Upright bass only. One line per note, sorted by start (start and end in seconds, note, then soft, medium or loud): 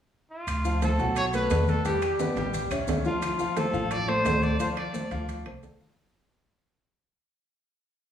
0.47 0.95 D2 medium
0.98 1.47 B1 medium
1.50 1.81 E2 medium
2.36 2.68 A1 medium
2.70 2.87 C#2 medium
2.87 3.18 D2 medium
3.73 4.21 A1 loud
4.25 4.56 D2 medium
5.11 5.43 D2 medium
5.46 5.62 C2 medium
5.63 5.93 D2 medium